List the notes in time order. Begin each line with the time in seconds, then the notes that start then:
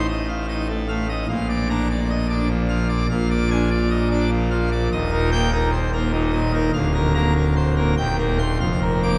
Already playing: A1 A2
0.09 D#5
0.28 F5
0.49 D#4 D#5
0.69 A3
0.88 A3 F5
1.09 D#5
1.29 A#1 A#2 F5
1.49 D5
1.70 D4 A#5
1.90 D5
2.10 D#5
2.30 D4 D5
2.49 F3
2.68 F3 F5
2.89 D5
3.10 A#1 A#2 F5
3.31 D5
3.51 D4 G#5
3.70 D5
3.90 D#5
4.11 D4 D5
4.31 F3
4.51 F3 F5
4.72 D5
4.92 D#1 D#2 D#5
5.11 D#4 A#4
5.31 A#3 G5
5.52 D#4 A#4
5.72 C5
5.93 A#3 A#4
6.12 A#2 D#4
6.33 A#2 D#5
6.53 D#4 A#4
6.73 D1 D2 F5
6.94 A#4
7.15 A#3 A#5
7.35 A#4
7.56 C5
7.77 A#3 A#4
7.97 D#1 D#2 G5
8.19 A#3 A#4
8.39 C6
8.60 F1 F2 F5
8.81 A#4
9.03 A#3 D6